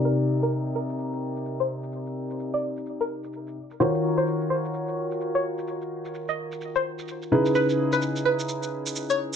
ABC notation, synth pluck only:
X:1
M:4/4
L:1/16
Q:"Swing 16ths" 1/4=128
K:Cphr
V:1 name="Synth pluck"
B z2 B z2 B2 z4 z c z2 | z4 z =d2 z2 B z6 | c z2 c z2 c2 z4 z d z2 | z4 z e2 z2 c z6 |
_c z2 c z2 c2 z4 z d z2 |]